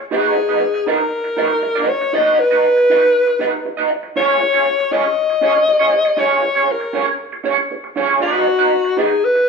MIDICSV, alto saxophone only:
0, 0, Header, 1, 2, 480
1, 0, Start_track
1, 0, Tempo, 506757
1, 95, Time_signature, 4, 2, 24, 8
1, 8988, End_track
2, 0, Start_track
2, 0, Title_t, "Alto saxophone"
2, 0, Program_c, 0, 65
2, 122, Note_on_c, 0, 68, 102
2, 838, Note_on_c, 0, 70, 101
2, 852, Note_off_c, 0, 68, 0
2, 1793, Note_on_c, 0, 73, 102
2, 1807, Note_off_c, 0, 70, 0
2, 2024, Note_on_c, 0, 75, 118
2, 2038, Note_off_c, 0, 73, 0
2, 2270, Note_on_c, 0, 71, 127
2, 2284, Note_off_c, 0, 75, 0
2, 3703, Note_off_c, 0, 71, 0
2, 3948, Note_on_c, 0, 73, 114
2, 4661, Note_on_c, 0, 75, 115
2, 4676, Note_off_c, 0, 73, 0
2, 5862, Note_on_c, 0, 73, 104
2, 5877, Note_off_c, 0, 75, 0
2, 6359, Note_on_c, 0, 70, 86
2, 6373, Note_off_c, 0, 73, 0
2, 6827, Note_off_c, 0, 70, 0
2, 7792, Note_on_c, 0, 66, 102
2, 8513, Note_on_c, 0, 68, 106
2, 8527, Note_off_c, 0, 66, 0
2, 8760, Note_on_c, 0, 71, 127
2, 8774, Note_off_c, 0, 68, 0
2, 8988, Note_off_c, 0, 71, 0
2, 8988, End_track
0, 0, End_of_file